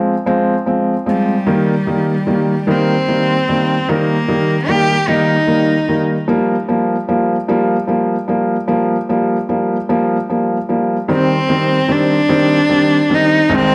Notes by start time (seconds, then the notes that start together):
Already playing: F3 G#3 C4
0.26 F3 G#3 C4
0.66 F3 G#3 C4
1.06 F3 G3 G#3 C4
1.47 D#3 G3 A#3
1.87 D#3 G3 A#3
2.27 D#3 G3 A#3
2.67 D#3 G3 A#3 C4
3.08 D#3 G3 A#3
3.49 D#3 G3 A#3
3.89 D#3 G3 A#3
4.28 D#3 G3 A#3
4.68 D#3 G3 A#3 G4
5.08 D#3 G3 A#3 D#4
5.47 D#3 G3 A#3
5.88 D#3 G3 A#3
6.28 F3 G3 A#3
6.68 F3 G3 A#3
7.08 F3 G3 A#3
7.48 F3 G3 A#3
7.87 F3 G3 A#3
8.28 F3 G3 A#3
8.68 F3 G3 A#3
9.09 F3 G3 A#3
9.49 F3 G3 A#3
9.89 F3 G3 A#3
10.30 F3 G3 A#3
10.69 F3 G3 A#3
11.08 D#3 G3 C4
11.13 C4
11.49 D#3 G3 C4
11.88 D#3 G3 C4 D4
12.29 D#3 G3 C4
12.69 D#3 G3 C4
13.10 D#3 G3 C4
13.15 D#4
13.49 C2 D#3 G#3 C4
13.54 C4